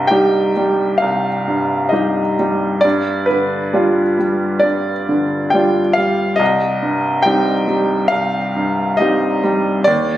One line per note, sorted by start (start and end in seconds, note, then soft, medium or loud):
0.00 0.97 C2 medium
0.00 0.37 G2 soft
0.00 1.89 D#5 medium
0.07 0.52 G3 soft
0.07 0.52 D#4 soft
0.07 0.52 G4 soft
0.07 1.00 G5 medium
0.57 1.28 G3 soft
0.98 1.91 F5 medium
1.02 2.81 C2 soft
1.48 2.21 G2 soft
1.89 2.34 G3 soft
1.89 2.34 D#4 soft
1.89 2.82 D#5 medium
1.94 2.35 G4 soft
2.39 2.84 G3 soft
2.81 4.61 G2 medium
2.81 3.27 D5 medium
3.26 4.02 D3 soft
3.26 4.63 B4 medium
3.73 4.15 G3 soft
3.73 4.15 D4 soft
3.73 4.16 F4 soft
4.18 4.92 G3 soft
4.59 6.35 G2 soft
4.59 5.52 D5 medium
5.09 5.79 D3 soft
5.50 5.93 G3 soft
5.50 5.95 G5 medium
5.55 5.94 D4 soft
5.55 5.94 F4 soft
5.93 6.38 F5 medium
5.98 6.40 G3 soft
6.36 8.08 C2 medium
6.36 7.24 D#5 medium
6.82 7.52 G2 soft
7.22 7.65 G3 soft
7.22 7.65 C4 soft
7.22 8.11 G5 medium
7.27 7.66 D#4 soft
7.68 8.38 G3 soft
8.08 9.82 C2 soft
8.08 8.97 F5 medium
8.56 9.25 G2 soft
8.97 9.39 G3 soft
8.97 9.40 C4 soft
8.97 9.85 D#5 medium
9.01 9.40 D#4 soft
9.44 9.87 G3 soft
9.84 10.18 D#2 medium
9.84 10.18 D5 medium